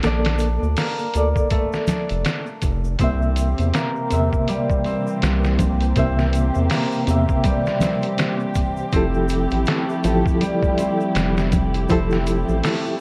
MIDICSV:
0, 0, Header, 1, 6, 480
1, 0, Start_track
1, 0, Tempo, 740741
1, 25, Time_signature, 4, 2, 24, 8
1, 8427, End_track
2, 0, Start_track
2, 0, Title_t, "Reed electric piano"
2, 0, Program_c, 0, 4
2, 0, Control_c, 0, 64, 127
2, 0, Note_on_c, 0, 69, 71
2, 0, Note_on_c, 0, 74, 87
2, 22, Note_on_c, 0, 58, 81
2, 30, Note_off_c, 0, 69, 0
2, 30, Note_on_c, 0, 69, 75
2, 43, Note_off_c, 0, 74, 0
2, 43, Note_on_c, 0, 74, 82
2, 719, Note_off_c, 0, 58, 0
2, 724, Note_off_c, 0, 69, 0
2, 730, Note_off_c, 0, 74, 0
2, 754, Note_on_c, 0, 69, 71
2, 761, Note_on_c, 0, 74, 84
2, 1925, Note_off_c, 0, 69, 0
2, 1929, Note_off_c, 0, 74, 0
2, 1952, Note_on_c, 0, 48, 66
2, 1953, Control_c, 0, 64, 0
2, 1959, Note_on_c, 0, 58, 62
2, 1970, Note_on_c, 0, 76, 75
2, 2053, Control_c, 0, 64, 127
2, 2644, Note_off_c, 0, 48, 0
2, 2648, Note_off_c, 0, 58, 0
2, 2654, Note_off_c, 0, 76, 0
2, 2661, Note_on_c, 0, 48, 75
2, 2671, Note_on_c, 0, 58, 69
2, 2681, Note_on_c, 0, 76, 88
2, 3839, Note_off_c, 0, 48, 0
2, 3844, Note_off_c, 0, 58, 0
2, 3849, Note_off_c, 0, 76, 0
2, 3867, Note_on_c, 0, 48, 80
2, 3878, Note_on_c, 0, 58, 75
2, 3884, Note_on_c, 0, 76, 85
2, 4562, Note_off_c, 0, 48, 0
2, 4568, Note_off_c, 0, 58, 0
2, 4571, Note_off_c, 0, 76, 0
2, 4585, Note_on_c, 0, 48, 82
2, 4600, Note_on_c, 0, 58, 71
2, 4606, Note_on_c, 0, 76, 89
2, 5761, Note_off_c, 0, 48, 0
2, 5769, Note_off_c, 0, 58, 0
2, 5772, Note_off_c, 0, 76, 0
2, 5788, Note_on_c, 0, 53, 74
2, 5793, Control_c, 0, 64, 0
2, 5793, Note_on_c, 0, 64, 64
2, 5802, Note_on_c, 0, 67, 66
2, 5807, Note_on_c, 0, 69, 80
2, 5901, Control_c, 0, 64, 127
2, 6483, Note_off_c, 0, 53, 0
2, 6485, Note_off_c, 0, 64, 0
2, 6489, Note_off_c, 0, 67, 0
2, 6492, Note_off_c, 0, 69, 0
2, 6510, Note_on_c, 0, 53, 84
2, 6518, Note_on_c, 0, 64, 75
2, 6524, Note_on_c, 0, 67, 79
2, 6528, Note_on_c, 0, 69, 87
2, 7684, Note_off_c, 0, 53, 0
2, 7688, Note_off_c, 0, 64, 0
2, 7690, Note_off_c, 0, 67, 0
2, 7693, Note_off_c, 0, 69, 0
2, 7703, Note_on_c, 0, 53, 88
2, 7712, Note_on_c, 0, 64, 78
2, 7717, Note_on_c, 0, 67, 77
2, 7723, Note_on_c, 0, 69, 92
2, 8400, Note_off_c, 0, 53, 0
2, 8405, Note_off_c, 0, 64, 0
2, 8407, Note_off_c, 0, 67, 0
2, 8410, Note_off_c, 0, 69, 0
2, 8427, End_track
3, 0, Start_track
3, 0, Title_t, "Harp"
3, 0, Program_c, 1, 46
3, 0, Note_on_c, 1, 57, 81
3, 21, Note_on_c, 1, 62, 89
3, 502, Note_on_c, 1, 58, 92
3, 541, Note_off_c, 1, 57, 0
3, 982, Note_on_c, 1, 57, 81
3, 1021, Note_off_c, 1, 58, 0
3, 1221, Note_off_c, 1, 62, 0
3, 1224, Note_on_c, 1, 62, 69
3, 1946, Note_on_c, 1, 60, 93
3, 2423, Note_on_c, 1, 58, 91
3, 2462, Note_off_c, 1, 57, 0
3, 2907, Note_on_c, 1, 55, 80
3, 3038, Note_off_c, 1, 62, 0
3, 3145, Note_off_c, 1, 60, 0
3, 3147, Note_on_c, 1, 60, 73
3, 3867, Note_off_c, 1, 60, 0
3, 3869, Note_on_c, 1, 60, 96
3, 4344, Note_off_c, 1, 58, 0
3, 4346, Note_on_c, 1, 58, 87
3, 4818, Note_off_c, 1, 55, 0
3, 4826, Note_on_c, 1, 55, 84
3, 5063, Note_off_c, 1, 60, 0
3, 5066, Note_on_c, 1, 60, 73
3, 5782, Note_off_c, 1, 60, 0
3, 5785, Note_on_c, 1, 60, 97
3, 5818, Note_off_c, 1, 55, 0
3, 6269, Note_on_c, 1, 57, 97
3, 6308, Note_off_c, 1, 58, 0
3, 6744, Note_on_c, 1, 55, 86
3, 6984, Note_off_c, 1, 60, 0
3, 6987, Note_on_c, 1, 60, 70
3, 7706, Note_off_c, 1, 60, 0
3, 7709, Note_on_c, 1, 60, 106
3, 8184, Note_off_c, 1, 57, 0
3, 8187, Note_on_c, 1, 57, 96
3, 8427, Note_off_c, 1, 55, 0
3, 8427, Note_off_c, 1, 57, 0
3, 8427, Note_off_c, 1, 60, 0
3, 8427, End_track
4, 0, Start_track
4, 0, Title_t, "String section"
4, 0, Program_c, 2, 48
4, 1943, Note_on_c, 2, 67, 84
4, 1947, Note_on_c, 2, 60, 68
4, 1948, Note_on_c, 2, 58, 68
4, 1949, Note_on_c, 2, 52, 73
4, 5760, Note_off_c, 2, 60, 0
4, 5761, Note_off_c, 2, 52, 0
4, 5761, Note_off_c, 2, 58, 0
4, 5778, Note_on_c, 2, 53, 75
4, 5781, Note_on_c, 2, 57, 66
4, 5782, Note_on_c, 2, 64, 67
4, 8427, Note_off_c, 2, 53, 0
4, 8427, Note_off_c, 2, 57, 0
4, 8427, Note_off_c, 2, 64, 0
4, 8427, Note_off_c, 2, 67, 0
4, 8427, End_track
5, 0, Start_track
5, 0, Title_t, "Analog synth bass"
5, 0, Program_c, 3, 38
5, 29, Note_on_c, 3, 34, 97
5, 381, Note_off_c, 3, 34, 0
5, 405, Note_on_c, 3, 38, 74
5, 493, Note_off_c, 3, 38, 0
5, 747, Note_on_c, 3, 38, 75
5, 870, Note_off_c, 3, 38, 0
5, 1367, Note_on_c, 3, 29, 89
5, 1454, Note_off_c, 3, 29, 0
5, 1703, Note_on_c, 3, 29, 104
5, 1920, Note_off_c, 3, 29, 0
5, 1944, Note_on_c, 3, 36, 101
5, 2298, Note_off_c, 3, 36, 0
5, 2327, Note_on_c, 3, 40, 75
5, 2414, Note_off_c, 3, 40, 0
5, 2672, Note_on_c, 3, 40, 73
5, 2792, Note_off_c, 3, 40, 0
5, 3390, Note_on_c, 3, 36, 92
5, 3848, Note_off_c, 3, 36, 0
5, 3866, Note_on_c, 3, 36, 98
5, 4219, Note_off_c, 3, 36, 0
5, 4254, Note_on_c, 3, 40, 79
5, 4338, Note_off_c, 3, 40, 0
5, 4586, Note_on_c, 3, 40, 79
5, 4709, Note_off_c, 3, 40, 0
5, 5787, Note_on_c, 3, 29, 95
5, 6139, Note_off_c, 3, 29, 0
5, 6170, Note_on_c, 3, 33, 75
5, 6255, Note_off_c, 3, 33, 0
5, 6508, Note_on_c, 3, 33, 79
5, 6630, Note_off_c, 3, 33, 0
5, 7229, Note_on_c, 3, 29, 93
5, 7688, Note_off_c, 3, 29, 0
5, 7710, Note_on_c, 3, 29, 96
5, 8061, Note_off_c, 3, 29, 0
5, 8090, Note_on_c, 3, 33, 79
5, 8176, Note_off_c, 3, 33, 0
5, 8427, End_track
6, 0, Start_track
6, 0, Title_t, "Drums"
6, 17, Note_on_c, 9, 42, 74
6, 19, Note_on_c, 9, 82, 50
6, 25, Note_on_c, 9, 38, 100
6, 82, Note_off_c, 9, 42, 0
6, 84, Note_off_c, 9, 82, 0
6, 90, Note_off_c, 9, 38, 0
6, 160, Note_on_c, 9, 42, 77
6, 162, Note_on_c, 9, 82, 24
6, 168, Note_on_c, 9, 38, 96
6, 225, Note_off_c, 9, 42, 0
6, 227, Note_off_c, 9, 82, 0
6, 232, Note_off_c, 9, 38, 0
6, 250, Note_on_c, 9, 82, 85
6, 260, Note_on_c, 9, 42, 57
6, 315, Note_off_c, 9, 82, 0
6, 325, Note_off_c, 9, 42, 0
6, 408, Note_on_c, 9, 82, 36
6, 473, Note_off_c, 9, 82, 0
6, 496, Note_on_c, 9, 82, 54
6, 497, Note_on_c, 9, 46, 76
6, 505, Note_on_c, 9, 38, 102
6, 561, Note_off_c, 9, 82, 0
6, 562, Note_off_c, 9, 46, 0
6, 569, Note_off_c, 9, 38, 0
6, 639, Note_on_c, 9, 82, 26
6, 703, Note_off_c, 9, 82, 0
6, 737, Note_on_c, 9, 42, 66
6, 744, Note_on_c, 9, 82, 86
6, 802, Note_off_c, 9, 42, 0
6, 809, Note_off_c, 9, 82, 0
6, 880, Note_on_c, 9, 36, 90
6, 885, Note_on_c, 9, 82, 43
6, 945, Note_off_c, 9, 36, 0
6, 950, Note_off_c, 9, 82, 0
6, 975, Note_on_c, 9, 82, 45
6, 976, Note_on_c, 9, 42, 81
6, 980, Note_on_c, 9, 36, 103
6, 1039, Note_off_c, 9, 82, 0
6, 1041, Note_off_c, 9, 42, 0
6, 1045, Note_off_c, 9, 36, 0
6, 1119, Note_on_c, 9, 82, 25
6, 1127, Note_on_c, 9, 38, 53
6, 1184, Note_off_c, 9, 82, 0
6, 1192, Note_off_c, 9, 38, 0
6, 1215, Note_on_c, 9, 82, 96
6, 1216, Note_on_c, 9, 64, 74
6, 1219, Note_on_c, 9, 42, 59
6, 1227, Note_on_c, 9, 38, 43
6, 1279, Note_off_c, 9, 82, 0
6, 1281, Note_off_c, 9, 64, 0
6, 1284, Note_off_c, 9, 42, 0
6, 1291, Note_off_c, 9, 38, 0
6, 1358, Note_on_c, 9, 42, 41
6, 1359, Note_on_c, 9, 82, 38
6, 1423, Note_off_c, 9, 42, 0
6, 1424, Note_off_c, 9, 82, 0
6, 1457, Note_on_c, 9, 42, 86
6, 1459, Note_on_c, 9, 82, 53
6, 1464, Note_on_c, 9, 38, 110
6, 1521, Note_off_c, 9, 42, 0
6, 1524, Note_off_c, 9, 82, 0
6, 1529, Note_off_c, 9, 38, 0
6, 1596, Note_on_c, 9, 82, 25
6, 1661, Note_off_c, 9, 82, 0
6, 1696, Note_on_c, 9, 42, 61
6, 1699, Note_on_c, 9, 82, 92
6, 1700, Note_on_c, 9, 36, 89
6, 1761, Note_off_c, 9, 42, 0
6, 1763, Note_off_c, 9, 82, 0
6, 1765, Note_off_c, 9, 36, 0
6, 1844, Note_on_c, 9, 82, 38
6, 1909, Note_off_c, 9, 82, 0
6, 1937, Note_on_c, 9, 42, 87
6, 1941, Note_on_c, 9, 36, 105
6, 1943, Note_on_c, 9, 82, 48
6, 2001, Note_off_c, 9, 42, 0
6, 2006, Note_off_c, 9, 36, 0
6, 2008, Note_off_c, 9, 82, 0
6, 2087, Note_on_c, 9, 82, 25
6, 2151, Note_off_c, 9, 82, 0
6, 2178, Note_on_c, 9, 42, 62
6, 2184, Note_on_c, 9, 82, 90
6, 2243, Note_off_c, 9, 42, 0
6, 2249, Note_off_c, 9, 82, 0
6, 2321, Note_on_c, 9, 42, 41
6, 2331, Note_on_c, 9, 82, 38
6, 2386, Note_off_c, 9, 42, 0
6, 2396, Note_off_c, 9, 82, 0
6, 2422, Note_on_c, 9, 42, 86
6, 2429, Note_on_c, 9, 82, 49
6, 2430, Note_on_c, 9, 38, 110
6, 2487, Note_off_c, 9, 42, 0
6, 2494, Note_off_c, 9, 82, 0
6, 2495, Note_off_c, 9, 38, 0
6, 2567, Note_on_c, 9, 82, 24
6, 2631, Note_off_c, 9, 82, 0
6, 2661, Note_on_c, 9, 42, 60
6, 2664, Note_on_c, 9, 82, 88
6, 2726, Note_off_c, 9, 42, 0
6, 2729, Note_off_c, 9, 82, 0
6, 2804, Note_on_c, 9, 36, 89
6, 2806, Note_on_c, 9, 82, 35
6, 2869, Note_off_c, 9, 36, 0
6, 2871, Note_off_c, 9, 82, 0
6, 2901, Note_on_c, 9, 42, 83
6, 2908, Note_on_c, 9, 82, 42
6, 2966, Note_off_c, 9, 42, 0
6, 2973, Note_off_c, 9, 82, 0
6, 3043, Note_on_c, 9, 36, 93
6, 3047, Note_on_c, 9, 82, 26
6, 3107, Note_off_c, 9, 36, 0
6, 3112, Note_off_c, 9, 82, 0
6, 3139, Note_on_c, 9, 42, 61
6, 3149, Note_on_c, 9, 82, 84
6, 3204, Note_off_c, 9, 42, 0
6, 3213, Note_off_c, 9, 82, 0
6, 3286, Note_on_c, 9, 82, 38
6, 3350, Note_off_c, 9, 82, 0
6, 3384, Note_on_c, 9, 42, 81
6, 3391, Note_on_c, 9, 82, 47
6, 3392, Note_on_c, 9, 38, 109
6, 3449, Note_off_c, 9, 42, 0
6, 3456, Note_off_c, 9, 82, 0
6, 3457, Note_off_c, 9, 38, 0
6, 3526, Note_on_c, 9, 82, 25
6, 3530, Note_on_c, 9, 38, 48
6, 3591, Note_off_c, 9, 82, 0
6, 3595, Note_off_c, 9, 38, 0
6, 3622, Note_on_c, 9, 42, 62
6, 3623, Note_on_c, 9, 36, 91
6, 3627, Note_on_c, 9, 64, 69
6, 3627, Note_on_c, 9, 82, 89
6, 3687, Note_off_c, 9, 42, 0
6, 3688, Note_off_c, 9, 36, 0
6, 3692, Note_off_c, 9, 64, 0
6, 3692, Note_off_c, 9, 82, 0
6, 3763, Note_on_c, 9, 42, 43
6, 3769, Note_on_c, 9, 82, 36
6, 3827, Note_off_c, 9, 42, 0
6, 3834, Note_off_c, 9, 82, 0
6, 3861, Note_on_c, 9, 42, 81
6, 3863, Note_on_c, 9, 82, 51
6, 3864, Note_on_c, 9, 36, 104
6, 3926, Note_off_c, 9, 42, 0
6, 3928, Note_off_c, 9, 36, 0
6, 3928, Note_off_c, 9, 82, 0
6, 4011, Note_on_c, 9, 38, 51
6, 4011, Note_on_c, 9, 82, 24
6, 4075, Note_off_c, 9, 82, 0
6, 4076, Note_off_c, 9, 38, 0
6, 4102, Note_on_c, 9, 42, 62
6, 4112, Note_on_c, 9, 82, 85
6, 4167, Note_off_c, 9, 42, 0
6, 4177, Note_off_c, 9, 82, 0
6, 4244, Note_on_c, 9, 82, 36
6, 4309, Note_off_c, 9, 82, 0
6, 4341, Note_on_c, 9, 46, 75
6, 4349, Note_on_c, 9, 38, 104
6, 4353, Note_on_c, 9, 82, 55
6, 4406, Note_off_c, 9, 46, 0
6, 4414, Note_off_c, 9, 38, 0
6, 4418, Note_off_c, 9, 82, 0
6, 4485, Note_on_c, 9, 82, 25
6, 4550, Note_off_c, 9, 82, 0
6, 4583, Note_on_c, 9, 42, 64
6, 4590, Note_on_c, 9, 82, 79
6, 4647, Note_off_c, 9, 42, 0
6, 4654, Note_off_c, 9, 82, 0
6, 4721, Note_on_c, 9, 82, 34
6, 4724, Note_on_c, 9, 36, 90
6, 4786, Note_off_c, 9, 82, 0
6, 4788, Note_off_c, 9, 36, 0
6, 4820, Note_on_c, 9, 42, 90
6, 4824, Note_on_c, 9, 36, 101
6, 4826, Note_on_c, 9, 82, 48
6, 4885, Note_off_c, 9, 42, 0
6, 4889, Note_off_c, 9, 36, 0
6, 4891, Note_off_c, 9, 82, 0
6, 4964, Note_on_c, 9, 82, 22
6, 4972, Note_on_c, 9, 38, 52
6, 5029, Note_off_c, 9, 82, 0
6, 5036, Note_off_c, 9, 38, 0
6, 5057, Note_on_c, 9, 64, 71
6, 5062, Note_on_c, 9, 82, 92
6, 5064, Note_on_c, 9, 42, 61
6, 5072, Note_on_c, 9, 38, 45
6, 5122, Note_off_c, 9, 64, 0
6, 5126, Note_off_c, 9, 82, 0
6, 5129, Note_off_c, 9, 42, 0
6, 5137, Note_off_c, 9, 38, 0
6, 5200, Note_on_c, 9, 82, 33
6, 5205, Note_on_c, 9, 42, 44
6, 5264, Note_off_c, 9, 82, 0
6, 5270, Note_off_c, 9, 42, 0
6, 5301, Note_on_c, 9, 42, 88
6, 5301, Note_on_c, 9, 82, 47
6, 5309, Note_on_c, 9, 38, 115
6, 5366, Note_off_c, 9, 42, 0
6, 5366, Note_off_c, 9, 82, 0
6, 5374, Note_off_c, 9, 38, 0
6, 5442, Note_on_c, 9, 82, 22
6, 5506, Note_off_c, 9, 82, 0
6, 5538, Note_on_c, 9, 82, 86
6, 5543, Note_on_c, 9, 42, 63
6, 5544, Note_on_c, 9, 36, 93
6, 5603, Note_off_c, 9, 82, 0
6, 5608, Note_off_c, 9, 42, 0
6, 5609, Note_off_c, 9, 36, 0
6, 5681, Note_on_c, 9, 82, 36
6, 5745, Note_off_c, 9, 82, 0
6, 5781, Note_on_c, 9, 82, 49
6, 5784, Note_on_c, 9, 36, 105
6, 5784, Note_on_c, 9, 42, 87
6, 5846, Note_off_c, 9, 82, 0
6, 5849, Note_off_c, 9, 36, 0
6, 5849, Note_off_c, 9, 42, 0
6, 5922, Note_on_c, 9, 82, 21
6, 5987, Note_off_c, 9, 82, 0
6, 6019, Note_on_c, 9, 82, 81
6, 6027, Note_on_c, 9, 42, 66
6, 6084, Note_off_c, 9, 82, 0
6, 6092, Note_off_c, 9, 42, 0
6, 6160, Note_on_c, 9, 82, 34
6, 6167, Note_on_c, 9, 42, 42
6, 6225, Note_off_c, 9, 82, 0
6, 6232, Note_off_c, 9, 42, 0
6, 6257, Note_on_c, 9, 82, 50
6, 6267, Note_on_c, 9, 42, 86
6, 6275, Note_on_c, 9, 38, 118
6, 6322, Note_off_c, 9, 82, 0
6, 6332, Note_off_c, 9, 42, 0
6, 6339, Note_off_c, 9, 38, 0
6, 6410, Note_on_c, 9, 82, 26
6, 6475, Note_off_c, 9, 82, 0
6, 6505, Note_on_c, 9, 82, 74
6, 6506, Note_on_c, 9, 42, 62
6, 6570, Note_off_c, 9, 82, 0
6, 6571, Note_off_c, 9, 42, 0
6, 6646, Note_on_c, 9, 36, 93
6, 6656, Note_on_c, 9, 82, 35
6, 6710, Note_off_c, 9, 36, 0
6, 6721, Note_off_c, 9, 82, 0
6, 6745, Note_on_c, 9, 42, 82
6, 6754, Note_on_c, 9, 82, 46
6, 6809, Note_off_c, 9, 42, 0
6, 6819, Note_off_c, 9, 82, 0
6, 6885, Note_on_c, 9, 36, 90
6, 6890, Note_on_c, 9, 82, 26
6, 6950, Note_off_c, 9, 36, 0
6, 6955, Note_off_c, 9, 82, 0
6, 6984, Note_on_c, 9, 42, 61
6, 6991, Note_on_c, 9, 82, 82
6, 7049, Note_off_c, 9, 42, 0
6, 7056, Note_off_c, 9, 82, 0
6, 7132, Note_on_c, 9, 82, 36
6, 7197, Note_off_c, 9, 82, 0
6, 7226, Note_on_c, 9, 42, 87
6, 7231, Note_on_c, 9, 82, 49
6, 7234, Note_on_c, 9, 38, 110
6, 7291, Note_off_c, 9, 42, 0
6, 7296, Note_off_c, 9, 82, 0
6, 7298, Note_off_c, 9, 38, 0
6, 7369, Note_on_c, 9, 82, 27
6, 7373, Note_on_c, 9, 38, 52
6, 7434, Note_off_c, 9, 82, 0
6, 7438, Note_off_c, 9, 38, 0
6, 7464, Note_on_c, 9, 42, 68
6, 7466, Note_on_c, 9, 36, 90
6, 7466, Note_on_c, 9, 82, 93
6, 7468, Note_on_c, 9, 64, 74
6, 7529, Note_off_c, 9, 42, 0
6, 7531, Note_off_c, 9, 36, 0
6, 7531, Note_off_c, 9, 82, 0
6, 7533, Note_off_c, 9, 64, 0
6, 7608, Note_on_c, 9, 42, 41
6, 7610, Note_on_c, 9, 82, 34
6, 7673, Note_off_c, 9, 42, 0
6, 7674, Note_off_c, 9, 82, 0
6, 7702, Note_on_c, 9, 82, 50
6, 7708, Note_on_c, 9, 36, 108
6, 7711, Note_on_c, 9, 42, 86
6, 7767, Note_off_c, 9, 82, 0
6, 7772, Note_off_c, 9, 36, 0
6, 7776, Note_off_c, 9, 42, 0
6, 7842, Note_on_c, 9, 82, 25
6, 7856, Note_on_c, 9, 38, 50
6, 7907, Note_off_c, 9, 82, 0
6, 7921, Note_off_c, 9, 38, 0
6, 7947, Note_on_c, 9, 82, 86
6, 7949, Note_on_c, 9, 42, 61
6, 8012, Note_off_c, 9, 82, 0
6, 8013, Note_off_c, 9, 42, 0
6, 8090, Note_on_c, 9, 82, 37
6, 8155, Note_off_c, 9, 82, 0
6, 8186, Note_on_c, 9, 46, 78
6, 8194, Note_on_c, 9, 38, 109
6, 8195, Note_on_c, 9, 82, 49
6, 8251, Note_off_c, 9, 46, 0
6, 8259, Note_off_c, 9, 38, 0
6, 8260, Note_off_c, 9, 82, 0
6, 8330, Note_on_c, 9, 82, 23
6, 8394, Note_off_c, 9, 82, 0
6, 8427, End_track
0, 0, End_of_file